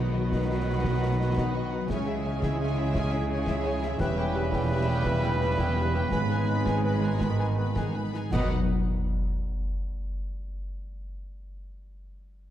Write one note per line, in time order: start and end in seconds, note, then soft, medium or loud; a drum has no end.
0.00 1.86 B1 medium
0.00 0.28 B2 loud
0.00 1.86 B2 medium
0.00 1.92 B2 medium
0.00 1.86 D#3 medium
0.00 1.10 F#3 medium
0.00 1.86 F#3 medium
0.00 1.19 B3 medium
0.00 1.86 B3 medium
0.00 0.14 D#4 medium
0.00 1.86 F#4 medium
0.00 0.14 B4 medium
0.00 1.86 B4 medium
0.00 0.14 F#5 medium
0.05 1.02 D#4 medium
0.13 0.32 B3 medium
0.13 1.91 F#4 medium
0.13 0.32 F#4 medium
0.13 0.23 F#4 medium
0.13 0.31 D#5 medium
0.13 0.20 D#5 medium
0.22 0.92 B4 medium
0.29 0.50 D#4 medium
0.29 0.39 F#4 medium
0.29 0.49 B4 medium
0.29 0.47 D#5 medium
0.29 0.39 D#5 medium
0.29 0.48 F#5 medium
0.29 concert bass drum medium
0.29 snare medium
0.40 0.57 F#5 medium
0.48 0.66 B3 medium
0.48 0.65 F#4 medium
0.48 0.58 F#4 medium
0.48 0.65 D#5 medium
0.48 0.66 D#5 medium
0.48 0.55 D#5 medium
0.58 0.75 F#5 medium
0.65 0.85 D#4 medium
0.65 0.76 F#4 medium
0.65 0.85 B4 medium
0.65 0.71 D#5 medium
0.65 0.83 D#5 medium
0.65 0.84 F#5 medium
0.76 1.91 F#5 medium
0.82 1.02 B3 medium
0.82 0.92 F#4 medium
0.82 1.03 F#4 medium
0.82 1.01 D#5 medium
0.82 0.89 D#5 medium
0.82 1.91 D#5 medium
0.82 concert bass drum medium
0.82 snare medium
1.00 1.20 D#4 medium
1.00 1.92 D#4 medium
1.00 1.10 F#4 medium
1.00 1.20 B4 medium
1.00 1.08 D#5 medium
1.00 1.19 F#5 medium
1.12 1.28 F#3 medium
1.17 1.36 B3 medium
1.17 1.36 F#4 medium
1.17 1.28 F#4 medium
1.17 1.35 D#5 medium
1.17 1.25 D#5 medium
1.29 1.45 F#3 medium
1.36 1.53 B3 medium
1.36 1.55 D#4 medium
1.36 1.46 F#4 medium
1.36 1.55 B4 medium
1.36 1.43 D#5 medium
1.36 1.54 F#5 medium
1.36 concert bass drum medium
1.36 snare medium
1.46 1.62 F#3 medium
1.54 1.72 B3 medium
1.54 1.73 F#4 medium
1.54 1.63 F#4 medium
1.54 1.72 D#5 medium
1.54 1.62 D#5 medium
1.64 1.80 F#3 medium
1.71 1.91 B3 medium
1.71 1.90 D#4 medium
1.71 1.81 F#4 medium
1.71 1.90 B4 medium
1.71 1.78 D#5 medium
1.71 1.89 F#5 medium
1.81 1.91 F#3 medium
1.88 3.96 C#2 medium
1.88 4.01 C#3 medium
1.88 3.96 C#3 medium
1.88 7.21 C#3 medium
1.88 3.96 G#3 medium
1.88 5.00 C#4 medium
1.88 2.06 C#4 medium
1.88 6.11 E4 medium
1.88 1.98 G#4 medium
1.88 4.01 G#4 medium
1.88 2.06 C#5 medium
1.88 1.97 E5 medium
1.88 2.05 G#5 medium
1.88 concert bass drum medium
1.88 snare medium
1.99 3.21 G#3 medium
2.06 3.29 C#4 medium
2.06 2.25 E4 medium
2.06 2.25 G#4 medium
2.06 2.15 G#4 medium
2.06 2.24 E5 medium
2.06 2.14 E5 medium
2.17 3.12 E4 medium
2.24 2.43 C#4 medium
2.24 2.33 G#4 medium
2.24 4.01 G#4 medium
2.24 2.43 C#5 medium
2.24 2.32 E5 medium
2.24 2.42 G#5 medium
2.34 3.03 C#5 medium
2.42 2.60 E4 medium
2.42 2.60 G#4 medium
2.42 2.51 G#4 medium
2.42 2.60 E5 medium
2.42 2.59 E5 medium
2.42 2.50 E5 medium
2.42 concert bass drum medium
2.42 snare medium
2.52 2.68 G#5 medium
2.60 2.77 C#4 medium
2.60 2.69 G#4 medium
2.60 2.77 C#5 medium
2.60 2.77 E5 medium
2.60 2.66 E5 medium
2.60 2.76 G#5 medium
2.69 2.85 G#5 medium
2.77 2.95 E4 medium
2.77 2.86 G#4 medium
2.77 2.96 G#4 medium
2.77 2.95 E5 medium
2.77 2.94 E5 medium
2.77 2.84 E5 medium
2.86 4.01 G#5 medium
2.95 3.13 C#4 medium
2.95 3.03 G#4 medium
2.95 3.13 C#5 medium
2.95 3.02 E5 medium
2.95 3.12 G#5 medium
2.95 concert bass drum medium
2.95 snare medium
3.04 4.01 C#5 medium
3.11 4.25 E4 medium
3.11 3.31 E4 medium
3.11 3.31 G#4 medium
3.11 3.22 G#4 medium
3.11 3.29 E5 medium
3.11 3.19 E5 medium
3.22 3.37 G#3 medium
3.30 3.46 C#4 medium
3.30 3.47 C#4 medium
3.30 3.38 G#4 medium
3.30 3.47 C#5 medium
3.30 3.37 E5 medium
3.30 3.46 G#5 medium
3.38 3.54 G#3 medium
3.47 3.64 C#4 medium
3.47 3.65 E4 medium
3.47 3.65 G#4 medium
3.47 3.56 G#4 medium
3.47 3.64 E5 medium
3.47 3.53 E5 medium
3.47 concert bass drum medium
3.47 snare medium
3.55 3.72 G#3 medium
3.64 3.81 C#4 medium
3.64 3.83 C#4 medium
3.64 3.73 G#4 medium
3.64 3.83 C#5 medium
3.64 3.70 E5 medium
3.64 3.82 G#5 medium
3.74 3.90 G#3 medium
3.82 4.01 C#4 medium
3.82 4.00 E4 medium
3.82 3.91 G#4 medium
3.82 4.00 G#4 medium
3.82 3.88 E5 medium
3.82 3.99 E5 medium
3.82 snare medium
3.91 4.01 G#3 medium
3.99 6.07 E1 loud
3.99 6.08 E2 medium
3.99 6.13 E3 loud
3.99 5.95 G3 loud
3.99 4.16 G4 medium
3.99 8.14 B4 loud
3.99 4.08 B4 medium
3.99 4.17 B4 medium
3.99 4.16 E5 medium
3.99 4.06 G5 medium
3.99 concert bass drum medium
3.99 snare medium
3.99 crash soft
4.08 5.31 G3 medium
4.17 5.40 B3 medium
4.17 4.35 E4 medium
4.17 4.35 G4 medium
4.17 4.26 B4 medium
4.17 4.35 G5 medium
4.17 4.25 G5 medium
4.26 5.22 E4 medium
4.34 4.52 G4 medium
4.34 6.13 G4 medium
4.34 4.43 B4 medium
4.34 4.53 B4 medium
4.34 4.52 E5 medium
4.34 4.43 G5 medium
4.43 5.13 B4 medium
4.52 4.70 E4 medium
4.52 4.70 G4 medium
4.52 4.62 B4 medium
4.52 4.69 E5 medium
4.52 4.70 G5 medium
4.52 4.61 G5 medium
4.52 concert bass drum medium
4.52 snare medium
4.70 4.87 G4 medium
4.70 4.78 B4 medium
4.70 4.87 B4 medium
4.70 4.87 E5 medium
4.70 4.86 E5 medium
4.70 4.77 G5 medium
4.79 4.96 G5 medium
4.86 5.05 E4 medium
4.86 5.06 G4 medium
4.86 4.96 B4 medium
4.86 5.05 E5 medium
4.86 5.04 G5 medium
4.86 4.96 G5 medium
5.03 8.13 B3 loud
5.03 5.22 G4 medium
5.03 5.13 B4 medium
5.03 5.23 B4 medium
5.03 5.22 E5 medium
5.03 6.14 E5 medium
5.03 5.13 G5 medium
5.03 concert bass drum medium
5.03 snare medium
5.23 5.40 E4 medium
5.23 6.14 E4 medium
5.23 5.41 G4 medium
5.23 5.32 B4 medium
5.23 5.40 G5 medium
5.23 5.31 G5 medium
5.32 5.49 G3 medium
5.40 5.58 B3 medium
5.40 5.57 G4 medium
5.40 5.57 B4 medium
5.40 5.49 B4 medium
5.40 5.57 E5 medium
5.40 5.48 G5 medium
5.50 5.66 G3 medium
5.58 5.75 B3 medium
5.58 5.76 E4 medium
5.58 5.77 G4 medium
5.58 5.67 B4 medium
5.58 5.77 G5 medium
5.58 5.66 G5 medium
5.58 concert bass drum medium
5.58 snare medium
5.68 5.84 G3 medium
5.76 5.93 B3 medium
5.76 5.94 G4 medium
5.76 5.85 B4 medium
5.76 5.95 B4 medium
5.76 5.95 E5 medium
5.76 5.84 G5 medium
5.85 6.01 G3 medium
5.94 6.38 B3 medium
5.94 6.12 E4 medium
5.94 6.13 G4 medium
5.94 6.03 B4 medium
5.94 6.12 G5 medium
5.94 6.01 G5 medium
6.03 6.13 G3 medium
6.11 8.14 G#1 loud
6.11 8.34 G#2 medium
6.11 8.14 G#2 loud
6.11 8.10 G#3 loud
6.11 6.29 B3 medium
6.11 8.10 G#4 loud
6.11 6.21 B4 medium
6.11 6.30 B4 medium
6.11 6.18 G#5 medium
6.11 6.29 B5 medium
6.11 concert bass drum medium
6.11 snare medium
6.21 7.47 D#3 medium
6.30 7.57 G#3 medium
6.30 6.48 D#4 medium
6.30 6.48 G#4 medium
6.30 6.39 B4 medium
6.30 6.48 G#5 medium
6.30 6.38 G#5 medium
6.39 7.38 B3 medium
6.47 6.65 B3 medium
6.47 8.32 D#4 medium
6.47 6.56 B4 medium
6.47 6.66 B4 medium
6.47 6.55 G#5 medium
6.47 6.66 B5 medium
6.57 7.29 G#4 medium
6.66 6.84 D#4 medium
6.66 6.84 G#4 medium
6.66 6.83 B4 medium
6.66 6.75 B4 medium
6.66 6.84 G#5 medium
6.66 6.74 G#5 medium
6.66 concert bass drum medium
6.66 snare medium
6.75 6.91 D#5 medium
6.84 7.01 B3 medium
6.84 7.01 B4 medium
6.84 6.93 B4 medium
6.84 6.92 G#5 medium
6.84 7.01 B5 medium
6.93 7.10 D#5 medium
7.03 7.21 D#4 medium
7.03 7.21 G#4 medium
7.03 7.11 B4 medium
7.03 7.21 G#5 medium
7.03 7.10 G#5 medium
7.11 10.60 D#5 medium
7.20 8.14 D#3 medium
7.20 7.39 B3 medium
7.20 8.32 B4 medium
7.20 7.39 B4 medium
7.20 7.30 B4 medium
7.20 7.26 G#5 medium
7.20 7.39 B5 medium
7.20 concert bass drum medium
7.20 snare medium
7.30 8.35 G#4 medium
7.38 8.31 B3 medium
7.38 7.57 D#4 medium
7.38 7.57 G#4 medium
7.38 7.47 B4 medium
7.38 7.57 G#5 medium
7.38 7.46 G#5 medium
7.49 7.66 D#3 medium
7.56 7.75 G#3 medium
7.56 7.74 B3 medium
7.56 7.74 B4 medium
7.56 7.67 B4 medium
7.56 7.64 G#5 medium
7.56 7.74 B5 medium
7.67 7.84 D#3 medium
7.75 7.94 G#3 medium
7.75 7.94 D#4 medium
7.75 7.95 G#4 medium
7.75 7.85 B4 medium
7.75 7.94 G#5 medium
7.75 7.82 G#5 medium
7.75 concert bass drum medium
7.75 snare medium
7.86 8.04 D#3 medium
7.93 8.13 G#3 medium
7.93 8.14 B3 medium
7.93 8.04 B4 medium
7.93 8.14 B4 medium
7.93 8.02 G#5 medium
7.93 8.13 B5 medium
8.05 8.23 D#3 medium
8.14 8.35 G#3 medium
8.14 8.31 D#4 medium
8.14 8.33 G#4 medium
8.14 8.23 B4 medium
8.14 8.33 G#5 medium
8.14 8.20 G#5 medium
8.14 snare medium
8.24 8.35 D#3 medium
8.30 8.53 B1 loud
8.30 8.54 B2 medium
8.30 8.51 B2 loud
8.30 8.54 F#3 medium
8.30 8.54 B3 medium
8.30 8.48 B3 medium
8.30 8.48 D#4 loud
8.30 8.54 D#4 medium
8.30 8.49 B4 medium
8.30 8.54 B4 medium
8.30 8.49 D#5 medium
8.30 8.53 F#5 medium
8.30 8.54 F#5 medium
8.30 concert bass drum loud
8.30 snare medium
8.30 crash medium
8.34 8.50 D#3 medium
8.34 8.50 F#3 medium
8.34 8.54 D#4 medium
8.34 8.54 B4 medium